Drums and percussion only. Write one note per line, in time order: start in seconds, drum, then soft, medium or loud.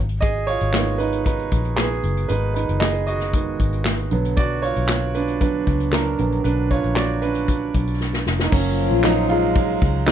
0.09 closed hi-hat soft
0.22 kick medium
0.22 closed hi-hat medium
0.48 closed hi-hat medium
0.61 closed hi-hat soft
0.73 snare loud
0.73 clap medium
1.00 closed hi-hat medium
1.12 closed hi-hat soft
1.26 kick medium
1.26 closed hi-hat medium
1.39 closed hi-hat soft
1.51 kick medium
1.51 closed hi-hat medium
1.65 closed hi-hat soft
1.77 snare loud
1.77 clap medium
2.03 closed hi-hat medium
2.17 closed hi-hat soft
2.29 closed hi-hat medium
2.56 closed hi-hat medium
2.69 closed hi-hat soft
2.81 snare loud
2.81 clap medium
3.07 closed hi-hat medium
3.20 snare soft
3.20 closed hi-hat soft
3.33 kick medium
3.33 closed hi-hat medium
3.60 kick medium
3.60 closed hi-hat medium
3.73 closed hi-hat soft
3.85 snare loud
3.85 clap medium
3.98 closed hi-hat soft
4.11 closed hi-hat medium
4.25 closed hi-hat soft
4.37 kick loud
4.37 closed hi-hat medium
4.63 closed hi-hat medium
4.76 closed hi-hat soft
4.89 snare loud
4.89 clap medium
5.15 closed hi-hat medium
5.28 closed hi-hat soft
5.41 kick medium
5.41 closed hi-hat medium
5.67 kick medium
5.67 closed hi-hat medium
5.80 closed hi-hat soft
5.92 snare medium
5.92 clap medium
6.19 closed hi-hat medium
6.32 closed hi-hat soft
6.45 closed hi-hat medium
6.71 kick medium
6.71 closed hi-hat medium
6.84 closed hi-hat soft
6.96 snare loud
6.96 clap medium
7.22 closed hi-hat medium
7.35 closed hi-hat soft
7.48 kick medium
7.48 closed hi-hat medium
7.74 kick medium
7.74 closed hi-hat medium
7.87 closed hi-hat soft
8.00 snare soft
8.13 snare medium
8.26 snare medium
8.39 snare medium
8.52 kick loud
8.52 crash loud
8.65 ride soft
8.78 ride medium
8.91 ride soft
9.04 snare loud
9.04 clap loud
9.04 ride medium
9.30 ride medium
9.42 ride soft
9.55 kick medium
9.55 ride medium
9.82 kick medium
9.82 ride medium
9.95 ride soft
10.07 snare loud
10.07 clap medium
10.07 ride medium